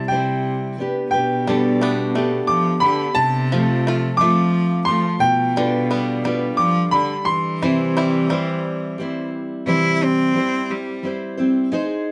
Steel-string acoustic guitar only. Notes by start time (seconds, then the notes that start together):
Already playing: G3 C4 E4 C5
0.11 G3 C4 E4 C5
0.78 B3 D4 G4 B4
1.14 D4 G4 B4
1.47 G3 B3 D4 G4 A4
2.15 B3 D4 G4 A4
2.83 B3 D4 G4 A4
3.52 F3 A3 C4 F4 A4
4.20 A3 C4 F4 A4
4.88 A3 F4 A4
5.56 G3 D4 F4 B4
6.24 G3 D4 F4 B4
6.93 G3 D4
7.62 C3 E3 G3 C4 E4 C5
8.29 G3 C4 E4 C5
8.98 G3 C4 E4 C5
9.66 C3 E3 G3 C4 E4 C5
10.34 G3 C4 E4 C5
11.03 G3 C4 E4 C5
11.37 G3 C4 E4 C5
11.72 G#3 D#4 G#4 C5